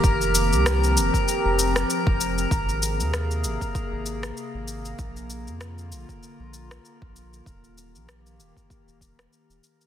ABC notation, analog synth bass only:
X:1
M:4/4
L:1/16
Q:"Swing 16ths" 1/4=97
K:Fdor
V:1 name="Analog synth bass" clef=bass
F,,,3 C,,3 F,,, z2 F,,,3 z F,,,3 | A,,,3 E,,3 A,,, z2 A,,,3 z A,,,3 | B,,,3 F,,3 B,,, z2 B,,,3 z B,,,3 | E,,,3 B,,,3 E,,, z2 E,,,3 z E,,, z2 |]